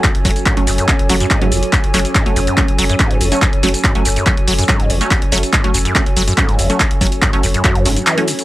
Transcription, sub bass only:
\new Staff \with { instrumentName = "Sub bass" } { \clef bass \time 4/4 \key fis \minor \tempo 4 = 142 r16 fis,,16 fis,,16 r8 fis,,16 fis,,16 r8 fis,,16 fis,,16 r8 fis,,16 fis,,16 r16 | r16 fis,,16 fis,,16 r8 fis,,16 fis,,16 r8 fis,,16 fis,,16 r8 fis,,16 fis,,16 r16 | r16 fis,,16 fis,,16 r8 fis,,16 fis,,16 r8 fis,,16 fis,,16 r8 fis,,16 fis,,16 r16 | r16 fis,,16 fis,,16 r8 fis,,16 fis,,16 r8 fis,,16 fis,,16 r8 fis,,16 fis,,16 r16 |
r16 fis,,16 fis,,16 r8 fis,,16 fis,,16 r8 fis,,16 fis,,16 r4 r16 | }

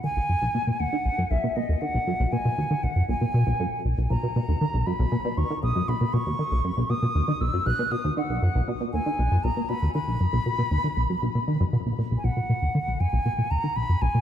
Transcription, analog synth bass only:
\new Staff \with { instrumentName = "Analog synth bass" } { \clef bass \time 4/4 \key b \major \tempo 4 = 118 dis16 b,,16 fis,16 b,,16 b,16 b,16 dis,16 dis16 b,,16 fis,16 b,,16 b,16 b,16 dis,16 dis16 b,,16 | fis,16 b,,16 b,16 b,16 dis,16 dis16 b,,16 fis,16 b,,16 b,16 b,16 b,,16 fis,16 r16 b,,16 b,,16 | b,,16 b,16 b,16 dis,16 dis16 b,,16 fis,16 b,,16 b,16 b,16 dis,16 dis16 b,,16 fis,16 b,,16 b,16 | b,16 dis,16 dis16 b,,16 fis,16 b,,16 b,16 b,16 dis,16 dis16 b,,16 fis,16 b,,16 b,16 b,16 dis,16 |
dis16 b,,16 fis,16 b,,16 b,16 b,16 dis,16 dis16 b,,16 fis,16 b,,16 b,16 b,16 dis,16 dis16 b,,16 | fis,16 b,,16 b,16 b,16 dis,16 dis16 b,,16 fis,16 b,,16 b,16 dis16 fis,16 b,16 b,,16 ais,16 b,,16 | b,,16 b,16 b,16 dis,16 dis16 b,,16 fis,16 b,,16 b,16 b,16 dis,16 dis16 b,,16 fis,16 b,,16 b,16 | }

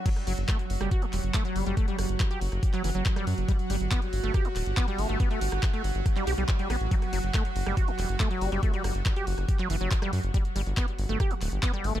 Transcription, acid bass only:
\new Staff \with { instrumentName = "Acid bass" } { \clef bass \time 4/4 \key e \dorian \tempo 4 = 140 fis16 r16 fis16 r16 a16 r8 g16 fis'16 fis16 r8 a16 fis16 g16 g16 | a16 g16 r8. g'16 r8. fis16 e16 fis16 r16 g16 r8 | g16 r16 g16 r16 b16 r8 a16 g'16 g16 r8 b16 g16 a16 a16 | b16 a16 r8. a16 r8. g16 g'16 g16 r16 g16 b16 r16 |
fis16 r16 fis16 r16 a16 r8 g16 fis'16 fis16 r8 a16 fis16 g16 g16 | a16 g16 r8. g'16 r8. fis16 e16 fis16 r16 g16 r8 | g16 r16 g16 r16 b16 r8 a16 g'16 g16 r8 b16 g16 a16 a16 | }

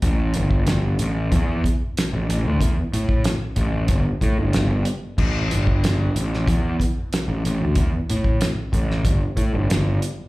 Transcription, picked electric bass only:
\new Staff \with { instrumentName = "Picked electric bass" } { \clef bass \time 4/4 \key c \major \tempo 4 = 93 a,,8 g,,4 a,,8 e,8 r8. a,,16 a,,16 d,16 | e,16 r16 a,8 r8 a,,8 g,,16 r16 a,16 g,,16 g,,8 r8 | a,,8 g,,4 a,,8 e,8 r8. a,,16 a,,16 d,16 | e,16 r16 a,8 r8 a,,8 g,,16 r16 a,16 g,,16 g,,8 r8 | }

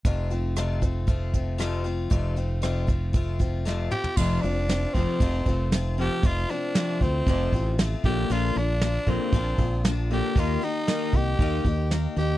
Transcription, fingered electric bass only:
\new Staff \with { instrumentName = "Fingered electric bass" } { \clef bass \time 4/4 \key f \mixolydian \tempo 4 = 116 f,,1 | f,,2.~ f,,8 r8 | f,,8 f,,4 f,,16 r16 f,,8 f,,4. | f,,8 r4 d,8 f,,8 a,,4 bes,,8 |
bes,,8 bes,,4 bes,,16 r16 bes,,8 bes,,4. | ees,8 r4 c,8 ees,8 ees,4 ees,8 | }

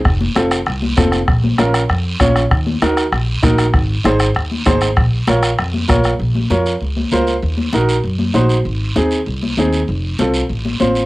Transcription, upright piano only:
\new Staff \with { instrumentName = "Upright piano" } { \time 4/4 \key bes \minor \tempo 4 = 195 r4 <c' f' a'>8 r4. <c' f' a'>8 r8 | r4 <des' f' bes'>8 r4. <des' f' des''>8 r8 | r4 <ees' ges' bes'>8 r4. <ees' ges' bes'>8 r8 | r4 <ees' aes' c''>8 r4. <ees' aes' c''>8 r8 |
r4 <f' bes' des''>8 r4. <f' bes' des''>8 r8 | r4 <f' bes' des''>8 r4. <f' bes' c''>8 r8 | r4 <ees' ges' bes'>8 r4. <ees' ges' c''>8 r8 | r4 <c' ees' aes'>8 r4. <c' ees' aes'>8 r8 |
r4 <c' f' a'>8 r4. <c' f' c''>8 r8 | }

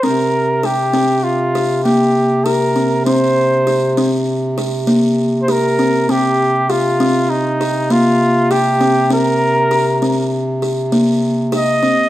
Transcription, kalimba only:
\new Staff \with { instrumentName = "Kalimba" } { \time 5/4 \key c \minor \tempo 4 = 99 c'4 g'8 c'4 g'8 bes4 g'8 c'8 | c'4 g'8 c'4 g'8 bes4 g'8 c'8 | c'4 g'8 c'4 g'8 bes4 g'8 c'8 | c'4 g'8 c'4 g'8 bes4 g'8 c'8 | }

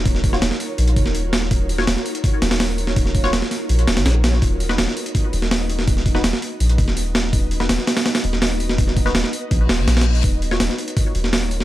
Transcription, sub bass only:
\new Staff \with { instrumentName = "Sub bass" } { \clef bass \time 4/4 \key ees \minor \tempo 4 = 165 ees,,4 ees,,16 r8. bes,,8 ees,,4. | ees,,4 ees,,16 r4 r16 ees,,4. | ees,,4 ees,,16 r8. bes,,8 ees,,16 aes,,16 bes,,4 | dis,,4 dis,,16 r4 r16 dis,,4. |
dis,,4 dis,,16 r8. bes,,8 dis,,4. | dis,,4 dis,,16 r4 r16 dis,,4. | dis,,4 dis,,16 r8. bes,,8 dis,,16 aes,,16 bes,,4 | r4 ees,,16 r4 r16 ees,,4. | }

